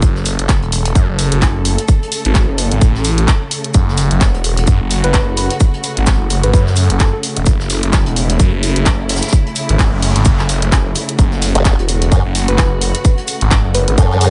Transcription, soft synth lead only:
5.04 B4
5.37 B4
6.43 B4
6.53 B4
7.00 A4
7.13 A4
12.48 B4
13.75 B4
13.88 B4
13.98 A4

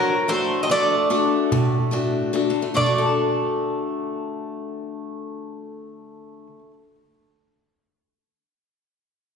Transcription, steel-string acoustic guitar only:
Already playing: A2 F#3 D4 F#4
0.28 A3 D4 F#4
0.70 D3
1.10 A3 D4 F#4
1.52 A2
1.91 A3 D4 F#4
2.33 A3 D4 F#4
2.50 D3
2.62 A3
2.74 D4
2.86 F#4
2.98 A4

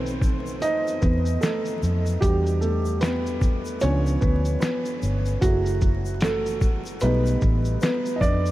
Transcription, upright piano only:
Already playing: D#3 A3 B3 C4 A4 B4 C5
0.62 D#4 D#5
1.01 B3 B4
1.41 A3 A4
2.21 G3 D4 F#4 G4
2.61 A3 A4
3.01 B3 B4
3.81 F3 B3 C#4 D4 C#5
4.21 B3 B4
4.60 B3 B4
5.41 F#3 A3 E4 F#4 G#4
6.22 A3 A4
7.02 G3 A3 B3 D#4 B4
7.82 B3 B4
8.16 D#5
8.21 D4 D5

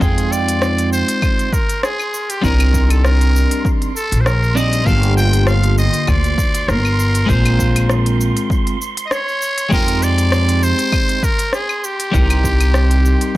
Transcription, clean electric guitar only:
0.00 G#3 C4 D#4 F4 G5
2.42 G3 C4 D4 D#4
2.46 A#4
4.55 G3 C4 D4 D#4 D5
4.84 D3 A#3 F4 G4 A4
7.26 G#3 C4 F4 A#4
9.70 G#3 C4 D#4 G4
12.12 G3 C4 D#4
12.16 A#4

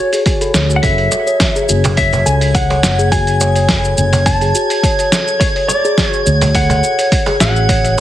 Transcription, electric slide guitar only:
Already playing: C#5
0.76 F#5
0.83 E5
1.97 E5
2.26 G#5
2.55 F#5
3.12 G#5
4.26 A5
5.40 C#5
5.68 D5
6.07 C#5
6.55 F#5
7.41 F#5

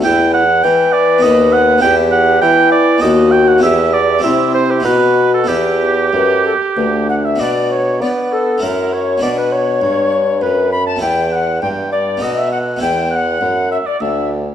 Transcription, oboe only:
0.04 G5
0.34 F#5
0.63 G5
0.93 D5
1.23 D#5
1.53 F#5
1.82 G5
2.12 F#5
2.42 G5
2.72 D5
3.02 D#5
3.31 G5
3.48 F#5
3.63 E5
3.93 D5
4.24 E5
4.54 C5
4.71 G4
4.85 B4
5.34 A4
5.48 G4
7.09 F#5
7.25 E5
7.40 D5
7.71 C#5
8.02 D5
8.32 A4
8.62 A#4
8.93 C#5
9.22 D5
9.37 B4
9.52 C#5
10.42 B4
10.72 B5
10.87 A5
11.02 G5
11.32 F#5
11.62 G5
11.92 D5
12.22 D#5
12.37 E5
12.52 F#5
12.82 G5
13.10 F#5
13.71 E5
13.86 D5
14.01 E5

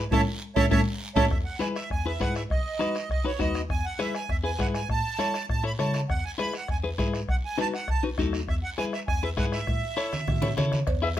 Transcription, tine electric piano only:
0.11 A2
0.56 A2
0.71 A2
1.16 A2
1.31 E2
1.91 E2
2.21 G#2
2.50 B1
3.10 B1
3.40 D#2
3.70 E2
4.29 E2
4.59 G#2
4.89 A2
5.49 A2
5.79 C#3
6.09 E2
6.69 E2
6.98 G#2
7.28 B1
7.88 B1
8.18 D#2
8.48 E2
9.08 E2
9.38 G#2
9.67 A2
10.28 A2
10.57 C#3
10.87 E2

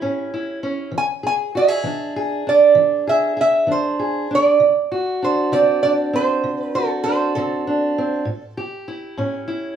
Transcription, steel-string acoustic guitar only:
Already playing: E4 G4
0.01 A2 C#4
0.34 E4
0.63 C#4
0.92 E3
1.23 G#4
1.55 F#4
1.68 G#4
1.84 E3 D4
2.16 G#4
2.47 D4
2.75 E3
3.07 G#4
3.37 G#4
3.67 E3 D4
3.99 G#4
4.31 D4
4.60 D3
4.92 F#4
5.22 D4
5.52 D3 C4
5.85 D4
6.13 C4
6.44 D3
6.75 F#4
7.06 D4
7.37 D3 C4
7.67 D4
7.98 C4
8.25 A2
8.57 G4
8.88 E4
9.18 A2 C#4
9.48 E4

